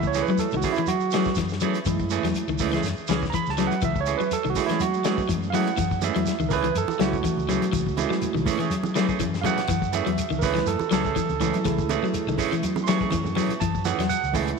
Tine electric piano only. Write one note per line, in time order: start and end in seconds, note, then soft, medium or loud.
0.00 0.60 G#3 medium
0.00 0.60 A3 medium
0.00 0.60 E4 medium
0.07 0.23 C#5 medium
0.22 0.38 B4 medium
0.39 0.55 A4 medium
0.57 0.72 F#4 medium
0.73 0.88 E4 loud
0.88 1.36 F#4 loud
1.86 2.56 G#3 medium
1.86 2.56 A3 soft
1.86 2.56 E4 medium
2.59 2.82 G#3 soft
2.59 2.82 A3 soft
2.59 2.82 E4 medium
3.30 3.33 A#5 medium
3.34 3.50 B5 loud
3.50 3.66 A5 medium
3.67 3.82 F#5 medium
3.85 3.99 E5 medium
4.01 4.15 C#5 medium
4.18 4.32 B4 medium
4.33 4.48 A4 loud
4.50 4.64 F#4 medium
4.56 5.52 G#3 medium
4.56 5.52 A3 medium
4.56 4.65 E4 medium
4.66 4.81 E4 medium
4.81 5.28 F#4 loud
5.50 5.75 G#3 soft
5.50 5.75 A3 soft
5.50 5.76 E4 soft
5.50 5.53 F5 medium
5.55 6.01 F#5 loud
6.02 6.36 G#3 medium
6.02 6.36 A3 soft
6.02 6.36 E4 medium
6.02 6.51 E5 medium
6.49 6.52 A#4 medium
6.53 6.76 B4 loud
6.77 7.00 A4 loud
6.99 7.22 G#3 soft
6.99 7.97 A3 medium
6.99 7.22 E4 medium
6.99 8.43 F#4 medium
7.97 8.67 G#3 medium
7.97 8.68 A3 soft
7.97 8.68 E4 medium
9.41 9.45 F5 medium
9.46 9.93 F#5 loud
9.95 10.42 E5 medium
10.39 10.75 G#3 medium
10.39 10.76 A3 medium
10.39 10.76 E4 medium
10.39 10.42 A#4 medium
10.44 10.67 B4 loud
10.67 10.91 A4 loud
10.93 12.35 A4 loud
11.40 11.62 G#3 soft
11.40 11.63 A3 soft
11.40 11.63 E4 medium
11.64 13.56 A3 soft
11.64 13.57 E4 medium
11.64 13.56 G#4 medium
12.84 12.87 C6 medium
12.88 13.59 C#6 loud
13.60 13.84 A5 medium
13.85 14.08 F#5 medium
14.09 14.33 F#5 loud
14.32 14.59 G#3 medium
14.32 14.59 A3 medium
14.32 14.59 E4 medium